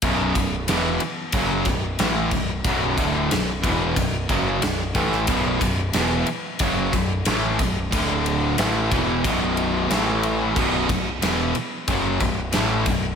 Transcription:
<<
  \new Staff \with { instrumentName = "Distorted electric guitar" } { \clef bass \time 4/4 \key b \minor \tempo 4 = 91 <b,, fis, b,>8 <b,, fis,>8 <e, b, e>8 r8 <fis, cis fis>8 <b,, fis,>8 <a, e a>8 <b,, fis,>8 | <b,, fis, b,>8 <d, a, d>8 <b,, fis,>8 <e, b, e>8 <b,, fis,>8 <fis, cis fis>8 <b,, fis,>8 <a, e a>8 | <b,, fis, b,>8 <b,, fis,>8 <e, b, e>8 r8 <fis, cis fis>8 <b,, fis,>8 <a, e a>8 <b,, fis,>8 | <d, a, d>4 <a, e a>8 <e, b, e>8 <b,, fis, b,>4 <a, e a>4 |
<b,, fis, b,>8 <b,, fis,>8 <e, b, e>8 r8 <fis, cis fis>8 <b,, fis,>8 <a, e a>8 <b,, fis,>8 | }
  \new Staff \with { instrumentName = "Distorted electric guitar" } { \clef bass \time 4/4 \key b \minor <b,, fis, b,>8 <b,, fis,>8 <e, b, e>8 r8 <fis, cis fis>8 <b,, fis,>8 <a, e a>8 <b,, fis,>8 | <b,, fis, b,>8 <d, a, d>8 <b,, fis,>8 <e, b, e>8 <b,, fis,>8 <fis, cis fis>8 <b,, fis,>8 <a, e a>8 | <b,, fis, b,>8 <b,, fis,>8 <e, b, e>8 r8 <fis, cis fis>8 <b,, fis,>8 <a, e a>8 <b,, fis,>8 | <d, a, d>4 <a, e a>8 <e, b, e>8 <b,, fis, b,>4 <a, e a>4 |
<b,, fis, b,>8 <b,, fis,>8 <e, b, e>8 r8 <fis, cis fis>8 <b,, fis,>8 <a, e a>8 <b,, fis,>8 | }
  \new Staff \with { instrumentName = "Overdriven electric guitar" } { \clef bass \time 4/4 \key b \minor <b,, fis, b,>8 <b,, fis,>8 <e, b, e>8 r8 <fis, cis fis>8 <b,, fis,>8 <a, e a>8 <b,, fis,>8 | <b,, fis, b,>8 <d, a, d>8 <b,, fis,>8 <e, b, e>8 <b,, fis,>8 <fis, cis fis>8 <b,, fis,>8 <a, e a>8 | <b,, fis, b,>8 <b,, fis,>8 <e, b, e>8 r8 <fis, cis fis>8 <b,, fis,>8 <a, e a>8 <b,, fis,>8 | <d, a, d>4 <a, e a>8 <e, b, e>8 <b,, fis, b,>4 <a, e a>4 |
<b,, fis, b,>8 <b,, fis,>8 <e, b, e>8 r8 <fis, cis fis>8 <b,, fis,>8 <a, e a>8 <b,, fis,>8 | }
  \new Staff \with { instrumentName = "Picked electric bass" } { \clef bass \time 4/4 \key b \minor b,,,8 b,,,8 e,,8 r8 fis,,8 b,,,8 a,,8 b,,,8 | b,,,8 d,,8 b,,,8 e,,8 b,,,8 fis,,8 b,,,8 a,,8 | b,,,8 b,,,8 e,,8 r8 fis,,8 b,,,8 a,,8 b,,,8 | d,,4 a,,8 e,,8 b,,,4 a,,4 |
b,,,8 b,,,8 e,,8 r8 fis,,8 b,,,8 a,,8 b,,,8 | }
  \new DrumStaff \with { instrumentName = "Drums" } \drummode { \time 4/4 <bd cymr>8 <bd cymr>8 <cymr sn>8 cymr8 <bd cymr>8 <bd cymr>8 <cymr sn>8 <bd cymr>8 | <bd cymr>8 <bd cymr>8 <cymr sn>8 <bd cymr>8 <bd cymr>8 <bd cymr>8 <cymr sn>8 <bd cymr>16 sn16 | <bd cymr>8 <bd cymr>8 <cymr sn>8 cymr8 <bd cymr>8 <bd cymr>8 <cymr sn>8 <bd cymr>8 | <bd cymr>8 cymr8 <cymr sn>8 <bd cymr>8 <bd cymr>8 cymr8 <cymr sn>8 cymr8 |
<cymc bd>8 <bd cymr>8 <cymr sn>8 cymr8 <bd cymr>8 <bd cymr>8 <cymr sn>8 <bd cymr>8 | }
>>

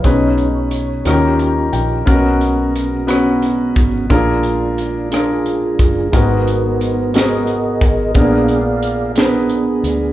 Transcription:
<<
  \new Staff \with { instrumentName = "Grand piano" } { \time 6/8 \key aes \dorian \tempo 4. = 59 << { r2 r8 g''8 | r2. | r2. | r2. |
r2. | } \\ { <cis' dis' gis' b'>4~ <cis' dis' gis' b'>16 r16 <des' ees' ges' g' bes'>4~ <des' ees' ges' g' bes'>16 r16 | <bes ces' des' ges' bes'>4~ <bes ces' des' ges' bes'>16 r16 <ces' des' ges' ces''>4~ <ces' des' ges' ces''>16 r16 | <d' f' aes' bes'>4~ <d' f' aes' bes'>16 r16 <d' f' aes' bes'>4~ <d' f' aes' bes'>16 r16 | <bes ces' ges' aes' bes'>4~ <bes ces' ges' aes' bes'>16 r16 <ces' ges' aes' bes'>4~ <ces' ges' aes' bes'>16 r16 |
<ces' d' aes' bes'>4~ <ces' d' aes' bes'>16 r16 <ces' d' aes' bes' ces''>4~ <ces' d' aes' bes' ces''>16 r16 | } >> }
  \new Staff \with { instrumentName = "Grand piano" } { \clef bass \time 6/8 \key aes \dorian b,4. ees4. | ces4. r4. | bes,4. r4. | aes,4. r4. |
bes,4. r4. | }
  \new Staff \with { instrumentName = "Tonewheel organ" } { \time 6/8 \key aes \dorian << { cis''2 r4 | r2. | r4. <d' f' aes'>4. | <ees' ges' ces''>4. <ges' aes' ees''>4. |
<aes' d'' f''>4. <ces' d' aes'>4. | } \\ { <gis cis' dis'>8 r4 <des' f' g'>4. | <aes ces' des' ges'>2. | <aes d' f'>2. | <ces' bes'>4. <aes ces'>8 r4 |
<aes ces' d'>8 r2 r8 | } >> }
  \new Staff \with { instrumentName = "Fingered electric bass" } { \clef bass \time 6/8 \key aes \dorian b,,4. ees,4 bes,,8 | ces,2~ ces,8 aes,,8 | bes,,2~ bes,,8 ges,,8 | aes,,2~ aes,,8 aes,,8 |
bes,,2~ bes,,8 d,8 | }
  \new DrumStaff \with { instrumentName = "Drums" } \drummode { \time 6/8 <hh bd>8 hh8 hh8 <hh ss>8 hh8 hh8 | <hh bd>8 hh8 hh8 <hh ss>8 <hh ss>8 <hh bd>8 | <hh bd>8 hh8 hh8 <hh ss>8 hh8 <hh bd>8 | <hh bd>8 hh8 hh8 <hh sn>8 hh8 <hh bd>8 |
<hh bd>8 hh8 hh8 <hh sn>8 hh8 hh8 | }
>>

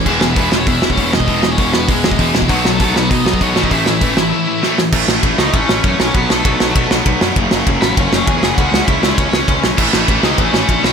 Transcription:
<<
  \new Staff \with { instrumentName = "Overdriven electric guitar" } { \time 4/4 \key a \lydian \tempo 4 = 198 <gis gis'>8. <b b'>8. <cis' cis''>8 <e' e''>8. <cis' cis''>8. <dis' dis''>8~ | <dis' dis''>8. <cis' cis''>8. <b b'>8 <gis gis'>4. r8 | <fis fis'>8. <a a'>8. <b b'>8 <dis' dis''>8 <dis' dis''>8 <cis' cis''>8. <dis' dis''>16 | <e' e''>2. r4 |
r4. <dis' dis''>8 <cis' cis''>4. <cis' cis''>8 | <b b'>8 <a a'>2 r4. | r4. <b b'>8 <cis' cis''>4 <gis' gis''>4 | <fis' fis''>8 <fis' fis''>8 <e' e''>4 <cis' cis''>8 <cis' cis''>4 r8 |
r4. <dis' dis''>8 <cis' cis''>4. <cis' cis''>8 | }
  \new Staff \with { instrumentName = "Distorted electric guitar" } { \time 4/4 \key a \lydian <e gis b e'>2 <e gis b e'>2 | <e gis b e'>2 <e gis b e'>2 | <b, dis fis b dis'>2 <b, dis fis b dis'>4. <a, e a cis' e'>8~ | <a, e a cis' e'>4. <a, e a cis' e'>2 r8 |
r1 | r1 | r1 | r1 |
<a, e a cis' e'>2.~ <a, e a cis' e'>8 <b, fis b dis'>8 | }
  \new Staff \with { instrumentName = "Distorted electric guitar" } { \clef bass \time 4/4 \key a \lydian <e, b, e>8 <e, b,>8 <e, b, e>8 <e, b,>8 <e, b,>8 <e, b,>8 <e, b, e>8 <e, b,>8 | <e, b, e>8 <e, b,>8 <e, b, e>8 <e, b,>8 <e, b,>8 <e, b,>8 <e, b, e>8 <e, b,>8 | <b, fis b>8 <b, fis>8 <b, fis b>8 <b, fis>8 <b, fis>8 <b, fis>8 <b, fis b>8 <a, e a>8 | <a, e a>8 <a, e>8 <a, e a>8 <a, e>8 <a, e>8 <a, e>8 <a, e a>8 <a, e>8 |
<a, e a>8 <a, e a>8 <a, e a>8 <a, e a>8 <a, e a>8 <a, e a>8 <a, e a>8 <b, fis b>8 | <b, fis b>8 <b, fis b>8 <b, fis b>8 <b, fis b>8 <b, fis b>8 <b, fis b>8 <b, fis b>8 <b, fis b>8 | <fis, cis fis>8 <fis, cis fis>8 <fis, cis fis>8 <fis, cis fis>8 <fis, cis fis>8 <fis, cis fis>8 <fis, cis fis>8 <fis, cis fis>8 | <cis gis cis'>8 <cis gis cis'>8 <cis gis cis'>8 <cis gis cis'>8 <cis gis cis'>8 <cis gis cis'>8 <cis gis cis'>8 <cis gis cis'>8 |
<a, e a>8 <a, e a>8 <a, e a>8 <a, e a>8 <a, e a>8 <a, e a>8 <a, e a>8 <b, fis b>8 | }
  \new Staff \with { instrumentName = "Picked electric bass" } { \clef bass \time 4/4 \key a \lydian e,,8 e,,8 e,,8 e,,8 e,8 e,,8 e,,8 e,,8 | e,,8 e,,8 e,,8 e,,8 e,8 e,,8 e,,8 e,,8 | b,,8 b,,8 b,,8 b,,8 b,8 b,,8 b,,8 a,,8 | a,,8 a,,8 a,,8 a,,8 r2 |
a,,8 a,,8 a,,8 cis,8 a,,8 a,,8 fis,8 b,,8 | b,,8 b,,8 b,,8 b,,8 b,,8 b,,8 b,,8 fis,8 | fis,,8 fis,,8 fis,,8 a,,8 fis,,8 fis,,8 e,8 fis,,8 | cis,8 cis,8 cis,8 cis,8 cis,8 cis,8 cis,8 b,,8 |
a,,8 a,,8 a,,8 cis,8 a,,8 a,,8 ais,,8 b,,8 | }
  \new DrumStaff \with { instrumentName = "Drums" } \drummode { \time 4/4 <cymc bd>8 sn8 <hho bd>8 sn8 <hho bd>8 sn16 bd16 <hho bd>8 sn16 bd16 | <hho bd>8 sn8 <hho bd>8 sn8 <hho bd>8 sn16 bd16 <hho bd>8 sn16 bd16 | <hho bd>8 sn8 <hho bd>8 sn8 <hho bd>8 sn16 bd16 <hho bd>8 sn16 bd16 | <hho bd>8 sn8 <hho bd>8 sn8 r4 sn8 sn8 |
<cymc bd>8 sn8 <bd cymr>8 sn8 <bd cymr>8 sn8 <bd cymr>8 sn8 | <bd cymr>8 sn8 <bd cymr>8 sn8 <bd cymr>8 sn8 <bd cymr>8 sn8 | <bd cymr>8 sn8 <bd cymr>8 sn8 <bd cymr>8 sn8 <bd cymr>8 sn8 | <bd cymr>8 sn8 <bd cymr>8 sn8 <bd cymr>8 sn8 <bd cymr>8 sn8 |
<cymc bd>8 sn8 <bd cymr>8 sn8 <bd cymr>8 sn8 <bd cymr>8 sn8 | }
>>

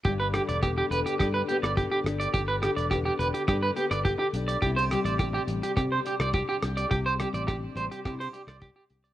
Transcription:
<<
  \new Staff \with { instrumentName = "Clean electric guitar" } { \time 4/4 \key g \major \tempo 4 = 105 g'16 b'16 g'16 d''16 g'16 g'16 b'16 g'16 g'16 b'16 g'16 d''16 g'16 g'16 r16 d''16 | g'16 b'16 g'16 d''16 g'16 g'16 b'16 g'16 g'16 b'16 g'16 d''16 g'16 g'16 r16 d''16 | g'16 c''16 g'16 d''16 g'16 g'16 r16 g'16 g'16 c''16 g'16 d''16 g'16 g'16 r16 d''16 | g'16 c''16 g'16 d''16 g'16 r16 c''16 g'16 g'16 c''16 g'16 d''16 g'16 g'16 r16 d''16 | }
  \new Staff \with { instrumentName = "Steel-string acoustic guitar" } { \time 4/4 \key g \major << { g'4 b4 d'8 b8 g'8 d'8 | g'4 b4 d'8 b8 g'8 d'8 | e'16 g'8. d'4 g'8 d'8 g'8 g'8 | g'4 d'4 e'16 g'16 d'8 g'8 r8 | } \\ { g,8 d4 d2~ d8~ | d8 d4 d2~ d8 | c8 g4 g2~ g8 | c8 g4 g2~ g8 | } >> }
  \new Staff \with { instrumentName = "Fingered electric bass" } { \clef bass \time 4/4 \key g \major g,,8. e,,8. e,,16 r16 g,8 r16 g,,8 r16 g,,8 | g,,8. e,,8. e,,16 r16 g,8 r16 g,,8 r16 b,,8 | c,8. a,,8. a,,16 r16 c8 r16 c,8 r16 c,8 | c,8. a,,8. a,,16 r16 c8 r16 c,8 r16 c,8 | }
  \new DrumStaff \with { instrumentName = "Drums" } \drummode { \time 4/4 <hh bd>8 <hh ss>16 hh16 <hh bd ss>8 hh16 hh16 <hh bd ss>8 hh16 <hh ss>16 <hh bd>8 <hh ss>16 hh16 | <hh bd>8 <hh ss>16 hh16 <hh bd ss>8 hh16 hh16 <hh bd ss>8 hh16 <hh ss>16 <hh bd>8 hh16 hh16 | <hh bd>8 <hh ss>16 hh16 <hh bd ss>8 hh16 hh16 <hh bd ss>8 hh16 <hh ss>16 <hh bd>8 <hh ss>16 hh16 | <hh bd>8 <hh ss>16 hh16 <hh bd ss>8 hh16 hh16 <hh bd ss>8 hh16 <hh ss>16 <hh bd>8 hh16 hh16 | }
>>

